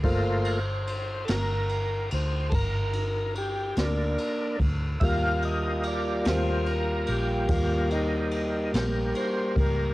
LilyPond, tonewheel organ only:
<<
  \new Staff \with { instrumentName = "Tonewheel organ" } { \time 12/8 \key g \minor \tempo 4. = 48 c''4. <a' bes'>4 c''8 <a' bes'>4 g'8 <bes d'>4 r8 | <e'' f''>8 ees''8 d''8 c''8 bes'8 g'8 f'8 ees'4 r8 c''8 bes'8 | }
  \new Staff \with { instrumentName = "Tonewheel organ" } { \time 12/8 \key g \minor <a bes f'>8 r1 r4. | <g bes f'>1. | }
>>